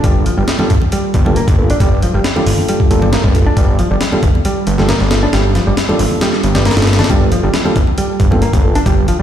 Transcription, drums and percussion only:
0.04 kick, closed hi-hat
0.26 closed hi-hat
0.48 snare, closed hi-hat
0.59 high conga
0.70 kick, closed hi-hat
0.82 high conga
0.92 closed hi-hat
1.14 kick, closed hi-hat
1.26 high conga
1.36 closed hi-hat
1.48 kick, closed hi-hat
1.70 closed hi-hat
1.80 kick, closed hi-hat
2.02 closed hi-hat
2.24 snare, closed hi-hat
2.36 high conga
2.46 open hi-hat
2.58 high conga
2.69 closed hi-hat
2.80 kick
2.91 closed hi-hat
3.02 high conga
3.13 snare, closed hi-hat
3.24 kick
3.35 kick, closed hi-hat
3.57 kick, closed hi-hat
3.79 closed hi-hat
4.01 snare, closed hi-hat
4.13 high conga
4.23 kick, closed hi-hat
4.35 high conga
4.45 closed hi-hat
4.67 closed hi-hat
4.78 snare, high conga
4.89 snare, closed hi-hat
5.00 snare
5.11 snare, closed hi-hat
5.33 snare, closed hi-hat
5.55 snare, closed hi-hat
5.77 snare, closed hi-hat
5.89 high conga
5.99 open hi-hat
6.11 high conga
6.21 snare, closed hi-hat
6.33 snare
6.43 closed hi-hat
6.55 snare, closed hi-hat, high conga
6.65 snare, closed hi-hat
6.71 snare, closed hi-hat
6.77 snare, closed hi-hat
6.82 snare, closed hi-hat
6.87 snare, closed hi-hat
6.93 snare, closed hi-hat
6.99 snare, closed hi-hat, high conga
7.04 snare, closed hi-hat
7.10 kick, closed hi-hat
7.32 closed hi-hat
7.54 snare, closed hi-hat
7.66 high conga
7.76 kick, closed hi-hat
7.87 high conga
7.98 closed hi-hat
8.20 kick, closed hi-hat
8.32 high conga
8.42 closed hi-hat
8.53 kick, closed hi-hat
8.75 closed hi-hat
8.86 kick, closed hi-hat
9.08 closed hi-hat

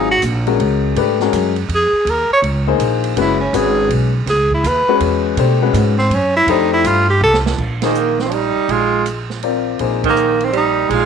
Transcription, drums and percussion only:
0.22 hi-hat pedal, ride
0.47 ride
0.60 ride
0.96 ride
1.20 snare
1.33 hi-hat pedal, ride
1.56 ride
1.69 ride
2.07 ride
2.44 ride
2.80 hi-hat pedal, ride
3.04 ride
3.17 ride
3.54 hi-hat pedal, ride
3.90 ride
4.27 snare, ride
4.51 kick
4.64 hi-hat pedal, ride
5.00 ride
5.37 ride
5.74 hi-hat pedal, ride
5.98 snare
6.11 ride
6.48 ride
6.84 hi-hat pedal, ride
7.34 snare
7.46 snare
7.58 kick, crash
7.82 snare, ride
7.95 hi-hat pedal
8.19 snare
8.31 ride
8.69 ride
9.06 hi-hat pedal, ride
9.30 snare
9.43 ride
9.79 ride
10.04 kick, ride
10.16 hi-hat pedal
10.40 ride
10.53 ride
10.90 ride

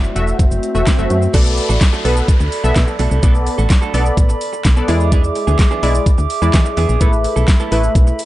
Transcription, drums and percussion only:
0.04 shaker
0.16 closed hi-hat, shaker
0.28 shaker
0.39 kick, closed hi-hat, shaker
0.51 shaker
0.63 closed hi-hat, shaker
0.75 shaker
0.87 kick, snare, clap, closed hi-hat, shaker
0.98 shaker
1.10 closed hi-hat, shaker
1.22 shaker
1.34 kick, closed hi-hat, crash, shaker
1.46 shaker
1.58 open hi-hat, shaker
1.70 shaker
1.81 kick, snare, clap, closed hi-hat, shaker
1.93 shaker
2.05 open hi-hat, shaker
2.17 shaker
2.28 kick, closed hi-hat, shaker
2.40 shaker
2.52 open hi-hat, shaker
2.64 shaker
2.76 kick, snare, clap, closed hi-hat, shaker
2.88 shaker
2.99 open hi-hat, shaker
3.11 shaker
3.23 kick, closed hi-hat, shaker
3.35 shaker
3.47 open hi-hat, shaker
3.59 shaker
3.70 kick, snare, clap, closed hi-hat, shaker
3.82 shaker
3.94 open hi-hat, shaker
4.06 shaker
4.17 kick, closed hi-hat, shaker
4.29 shaker
4.41 open hi-hat, shaker
4.53 shaker
4.65 kick, snare, clap, closed hi-hat, shaker
4.76 shaker
4.88 open hi-hat, shaker
5.00 shaker
5.12 kick, closed hi-hat, shaker
5.24 shaker
5.35 open hi-hat, shaker
5.48 shaker
5.59 kick, snare, clap, closed hi-hat, shaker
5.71 shaker
5.83 open hi-hat, shaker
5.95 shaker
6.06 kick, closed hi-hat, shaker
6.18 shaker
6.30 open hi-hat, shaker
6.42 shaker
6.54 kick, snare, clap, closed hi-hat, shaker
6.65 shaker
6.77 open hi-hat, shaker
6.89 shaker
7.01 kick, closed hi-hat, shaker
7.13 shaker
7.24 open hi-hat, shaker
7.37 shaker
7.48 kick, snare, clap, closed hi-hat, shaker
7.60 shaker
7.72 open hi-hat, shaker
7.84 shaker
7.95 kick, closed hi-hat, shaker
8.07 shaker
8.19 open hi-hat, shaker

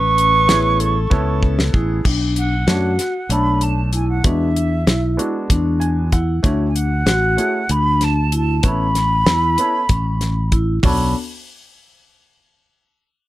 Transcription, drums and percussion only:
0.18 closed hi-hat
0.49 snare, closed hi-hat
0.80 closed hi-hat
1.11 kick
1.43 kick
1.59 snare
1.74 kick
2.05 kick, crash
2.36 closed hi-hat
2.68 snare, closed hi-hat
2.99 snare, closed hi-hat
3.30 closed hi-hat
3.61 closed hi-hat
3.93 closed hi-hat
4.24 kick, closed hi-hat
4.56 closed hi-hat
4.87 snare, closed hi-hat
5.19 closed hi-hat
5.50 kick, closed hi-hat
5.81 closed hi-hat
6.12 kick, closed hi-hat
6.44 kick, closed hi-hat
6.76 closed hi-hat
7.07 snare, closed hi-hat
7.38 closed hi-hat
7.69 closed hi-hat
8.01 snare, closed hi-hat
8.32 closed hi-hat
8.63 kick, closed hi-hat
8.95 snare, closed hi-hat
9.26 snare, closed hi-hat
9.58 closed hi-hat
9.89 kick, closed hi-hat
10.21 snare, closed hi-hat
10.52 kick, closed hi-hat
10.83 kick, floor tom, open hi-hat

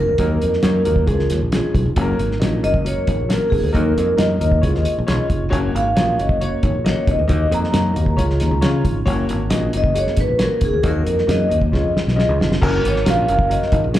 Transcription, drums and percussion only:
0.18 kick, closed hi-hat
0.42 closed hi-hat
0.53 snare
0.63 snare, closed hi-hat
0.85 closed hi-hat
0.96 kick
1.08 kick, closed hi-hat
1.19 snare
1.30 snare, closed hi-hat
1.52 snare, closed hi-hat
1.75 kick, closed hi-hat
1.96 kick, closed hi-hat
2.19 closed hi-hat
2.32 snare
2.42 snare, closed hi-hat
2.64 closed hi-hat
2.74 kick
2.86 closed hi-hat
3.07 kick, closed hi-hat
3.30 snare, closed hi-hat
3.52 kick, open hi-hat
3.75 kick, closed hi-hat
3.98 closed hi-hat
4.18 snare, closed hi-hat
4.41 closed hi-hat
4.52 kick
4.63 kick, closed hi-hat
4.75 snare
4.85 closed hi-hat
5.08 snare, closed hi-hat
5.30 kick, closed hi-hat
5.52 kick, closed hi-hat
5.76 closed hi-hat
5.97 snare, closed hi-hat
6.19 closed hi-hat
6.29 kick
6.41 closed hi-hat
6.63 kick, closed hi-hat
6.86 snare, closed hi-hat
7.07 kick, closed hi-hat
7.29 kick, closed hi-hat
7.52 closed hi-hat
7.64 snare
7.74 snare, closed hi-hat
7.96 closed hi-hat
8.06 kick
8.18 kick, closed hi-hat
8.30 snare
8.40 snare, closed hi-hat
8.62 snare, closed hi-hat
8.85 kick, closed hi-hat
9.07 kick, closed hi-hat
9.29 closed hi-hat
9.50 snare, closed hi-hat
9.73 closed hi-hat
9.84 kick
9.96 closed hi-hat
10.07 snare
10.17 kick, snare, closed hi-hat
10.39 snare, closed hi-hat
10.61 kick, closed hi-hat
10.83 kick, closed hi-hat
11.07 closed hi-hat
11.18 snare
11.29 snare, closed hi-hat
11.51 closed hi-hat
11.62 kick
11.73 kick, snare
11.97 snare
12.08 snare
12.19 snare
12.41 snare
12.52 snare
12.62 kick, crash
12.85 closed hi-hat
12.96 snare
13.06 snare, closed hi-hat
13.28 closed hi-hat
13.39 kick
13.51 closed hi-hat
13.63 snare
13.72 kick, closed hi-hat
13.94 snare, closed hi-hat

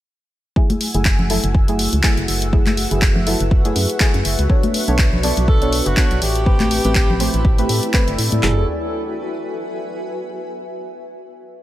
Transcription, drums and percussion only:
0.56 kick
0.70 closed hi-hat, high conga
0.81 open hi-hat
0.94 closed hi-hat
1.05 kick, clap
1.19 low conga
1.30 open hi-hat
1.44 closed hi-hat
1.55 kick
1.68 closed hi-hat
1.79 open hi-hat
1.93 closed hi-hat
2.03 kick, clap
2.17 closed hi-hat
2.28 open hi-hat
2.42 closed hi-hat
2.53 kick
2.66 clap, closed hi-hat, high conga
2.77 open hi-hat
2.91 closed hi-hat
3.02 kick, clap
3.15 low conga
3.27 open hi-hat
3.40 closed hi-hat
3.51 kick
3.65 closed hi-hat
3.76 open hi-hat
3.90 closed hi-hat
4.00 kick, clap
4.14 closed hi-hat
4.25 open hi-hat
4.39 closed hi-hat
4.50 kick
4.63 closed hi-hat, high conga
4.74 open hi-hat
4.88 closed hi-hat
4.99 kick, clap
5.13 low conga
5.23 open hi-hat
5.37 closed hi-hat
5.48 kick
5.62 closed hi-hat
5.73 open hi-hat
5.86 closed hi-hat
5.97 kick, clap
6.11 closed hi-hat
6.22 open hi-hat
6.36 closed hi-hat
6.46 kick
6.60 clap, closed hi-hat, high conga
6.71 open hi-hat
6.85 closed hi-hat
6.95 kick, clap
7.10 low conga
7.20 open hi-hat
7.34 closed hi-hat
7.45 kick
7.58 closed hi-hat
7.69 open hi-hat
7.83 closed hi-hat
7.94 kick, clap
8.08 closed hi-hat
8.18 open hi-hat
8.32 closed hi-hat, high conga
8.43 snare, clap, floor tom

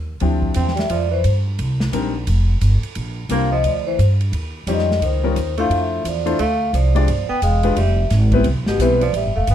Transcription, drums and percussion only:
0.20 ride
0.42 kick
0.54 hi-hat pedal, ride
0.68 snare
0.77 snare, ride
0.89 ride
1.24 hi-hat pedal, ride
1.59 ride
1.80 snare
1.93 hi-hat pedal, ride
2.27 ride
2.61 hi-hat pedal, ride
2.83 ride
2.95 ride
3.29 hi-hat pedal, ride
3.64 ride
3.99 hi-hat pedal, ride
4.21 ride
4.33 ride
4.67 hi-hat pedal, ride
4.78 snare
4.91 snare
5.02 ride
5.36 hi-hat pedal, ride
5.57 ride
5.71 ride
6.05 hi-hat pedal, ride
6.27 ride
6.39 ride
6.74 hi-hat pedal, ride
6.96 ride
7.08 ride
7.42 hi-hat pedal, ride
7.63 ride
7.76 ride
8.10 snare, hi-hat pedal, ride
8.32 kick, ride
8.44 ride
8.66 snare
8.80 hi-hat pedal, ride
9.01 ride
9.14 ride
9.47 hi-hat pedal, ride

